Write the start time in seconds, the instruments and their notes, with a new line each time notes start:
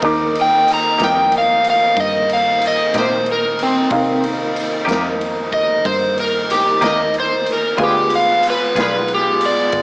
Already playing: horn section A#3 C4 D#4
0.02 fingered electric bass D#2, tonewheel organ D#3 A#3 D#4, upright piano D#4 A#4 D6, kick, ride
0.32 tonewheel organ D#3 A#3, ride
0.41 electric slide guitar G5
0.68 ride
0.74 electric slide guitar A#5
0.98 fingered electric bass F2, clean electric guitar C3 A#3 D#4 G4, snare, ride
1.04 electric slide guitar G5
1.32 ride
1.38 electric slide guitar F5
1.64 ride
1.70 electric slide guitar F5
1.97 fingered electric bass G2, electric slide guitar D#5, kick, ride
2.29 electric slide guitar F5, ride
2.61 ride
2.67 electric slide guitar D#5
2.94 fingered electric bass A#2, clean electric guitar C3 A#3 D#4 G4, snare, ride
2.98 electric slide guitar C5
3.26 ride
3.32 electric slide guitar A#4
3.59 electric slide guitar C4, ride
3.90 fingered electric bass C3, tonewheel organ D#3 A#3, upright piano D#4 A#4 F5, kick, ride
4.24 ride
4.56 ride
4.85 fingered electric bass F2, clean electric guitar C3 A#3 D#4 G4, ride
4.91 snare
5.21 ride
5.53 electric slide guitar D#5, kick, ride
5.85 fingered electric bass G2, electric slide guitar C5, kick, ride
6.18 electric slide guitar A#4, ride
6.50 electric slide guitar G4, snare, ride
6.81 fingered electric bass D#2, clean electric guitar C3 A#3 D#4 G4, electric slide guitar D#5, snare, ride
7.14 ride
7.20 electric slide guitar C5
7.46 ride
7.53 electric slide guitar A#4
7.77 fingered electric bass D2, clean electric guitar G3 B3 F4 G#4, horn section G#3 B3 F4, tonewheel organ G#3 B3 F4, upright piano G#3 F4 B4, kick, ride
7.83 electric slide guitar G4
8.10 ride
8.16 electric slide guitar F5
8.43 ride
8.50 electric slide guitar B4
8.75 fingered electric bass B1, clean electric guitar G3 B3 F4 G#4, snare, ride
8.83 electric slide guitar B4
9.08 ride
9.14 electric slide guitar G4
9.41 ride
9.46 electric slide guitar D5
9.72 fingered electric bass G1, kick, ride